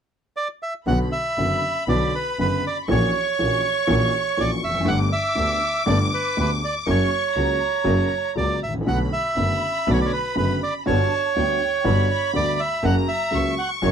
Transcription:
0.37 D5
0.63 E5
0.87 B1 B2 D3 F#3 B3 F#4 F#5 B5
1.12 E5
1.38 F#1 F#2 D3 F#3 B3 F#4
1.88 B1 B2 D3 F#3 B3 F#4 D5
2.15 B4
2.39 F#1 F#2 D3 F#3 B3 F#4 B4
2.67 D5
2.88 A#1 A#2 E3 A#3 C#4 F#4 C#5 C#6
3.39 A#1 A#2 E3 A#3 C#4 F#4
3.87 A#1 A#2 E3 A#3 C#4 F#4
4.37 A#1 A#2 E3 A#3 C#4 F#4 D5
4.64 F1 E5
4.69 E2
4.75 F2
4.80 F#2
4.85 G1 G2 D3 A3 B3 G4 F#5 D6
5.13 E5
5.35 D2 D3 A3 B3 G4
5.86 G1 G2 D3 A3 B3 G4 D5
6.14 B4
6.37 D2 D3 A3 B3 G4 B4
6.64 D5
6.87 F#1 F#2 C#3 F#3 A#3 F#4 C#5 C#6
7.36 C#2 C#3 F#3 A#3 F#4 A#5
7.84 F#1 F#2 C#3 F#3 A#3 F#4
8.35 C#2 C#3 F#3 A#3 F#4 D5
8.61 A1 E5
8.68 G#1
8.74 A1
8.81 A#1
8.85 B1 B2 D3 A3 B3 F#4 F#5 B5
9.13 E5
9.36 F#1 F#2 D3 A3 B3 F#4
9.87 B1 B2 D3 A3 B3 F#4 D5
9.93 C#5
10.01 D5
10.05 C#5
10.13 B4
10.36 F#1 F#2 D3 A3 B3 F#4 B4
10.63 D5
10.86 G1 G2 D3 G3 B3 F#4 C#5 A5
11.36 D2 D3 G3 B3 F#4 G5
11.84 G1 G2 D3 G3 B3 F#4 B5
12.10 B5
12.33 D2 D3 G3 B3 F#4 D5
12.60 E5
12.83 F#1 F#2 C#3 F#3 A#3 F#4 F#5 A#5
13.08 E5
13.31 C#2 C#3 F#3 A#3 F#4 C#6
13.58 F#5
13.82 F#1 F#2 C#3 F#3 A#3 F#4 C#5

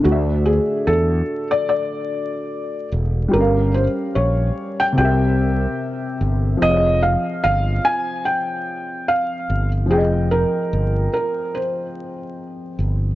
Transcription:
0.00 D3 A3
0.04 D2 F#4
0.09 D5 E5
0.46 G#4
0.87 E2 A4
1.51 D5
1.69 D5
2.92 E1
3.28 G3 G4
3.33 G1 A4 A#4
3.37 C#4 A#4 F5
3.74 C5
4.15 A#1 C#5
4.80 G5
4.92 C3 C4
4.98 C2 G4 A#4 G5
5.05 E5
6.21 G1
6.57 F3 C4
6.62 F1 F4 D#5
6.66 G#4 C#5
6.76 D#5
7.03 F5
7.44 G1 F5
7.85 G#5
8.25 G5
9.08 F5
9.50 G1
9.86 F3 C4
9.90 F1 G#4 G5
9.95 G#4 D#5
10.31 A#4
10.73 G1
11.14 A#4
11.55 C5
12.79 G1

